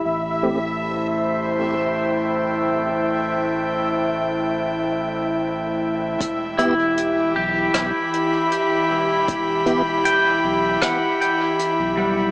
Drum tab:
HH |--------|--------|xxx-xxx-|xxx-xxx-|
SD |--------|--------|----r---|----r---|
BD |--------|--------|o---o---|o---o---|